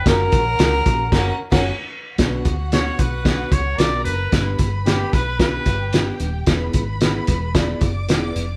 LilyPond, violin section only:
\new Staff \with { instrumentName = "Violin section" } { \time 4/4 \key fis \phrygian \tempo 4 = 112 <cis' ais' fis''>2 <cis' ais' fis''>8 r16 <cis' ais' fis''>8 r8. | \key b \minor <fis' fis''>2. <ais' ais''>4 | <b' b''>2~ <b' b''>8 <g' g''>4. | <b' b''>2~ <b' b''>8 <d'' d'''>4. | }